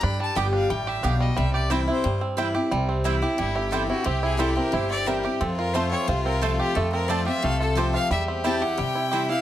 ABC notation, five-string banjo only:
X:1
M:4/4
L:1/8
Q:1/4=178
K:C
V:1 name="Five-string banjo"
D G, G D G, G D G, | G, G G, E G, C E G | G, C E G G, E G E | C E G, C E C G, G |
C F A, C F C A, G | A, C F G A, F G F | G, C E G G, E G E |]